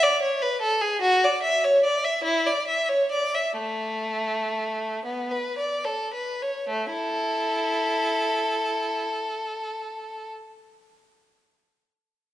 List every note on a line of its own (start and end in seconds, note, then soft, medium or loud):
0.03 0.21 D5 medium
0.22 0.40 C#5 medium
0.42 0.60 B4 medium
0.61 0.80 A4 medium
0.81 1.01 G#4 medium
1.02 1.21 F#4 medium
1.24 1.43 D5 medium
1.43 1.62 E5 medium
1.64 1.83 C#5 medium
1.84 2.03 D5 medium
2.04 2.24 E5 medium
2.24 2.44 E4 medium
2.46 2.66 D5 medium
2.67 2.88 E5 medium
2.89 3.10 C#5 medium
3.12 3.33 D5 medium
3.35 3.57 E5 medium
3.57 5.02 A3 medium
5.05 5.31 B3 soft
5.31 5.58 B4 soft
5.58 5.85 D5 soft
5.84 6.13 A4 soft
6.13 6.41 B4 soft
6.42 6.69 C#5 soft
6.68 6.92 A3 medium
6.92 9.03 E4 soft
6.92 10.28 A4 medium